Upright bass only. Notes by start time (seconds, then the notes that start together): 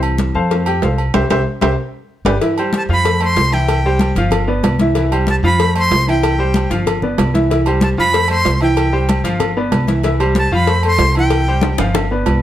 Already playing: C2
0.35 F2
0.82 C2
1.15 C2
1.30 C2
1.62 C2
2.25 G1
2.89 F2
3.36 C2
4.15 G1
4.63 C2
5.43 F2
5.91 C2
6.70 G1
7.18 C2
7.97 F2
8.45 C2
9.24 G1
9.72 C2
10.51 F2
10.98 C2
11.78 G1
12.26 C2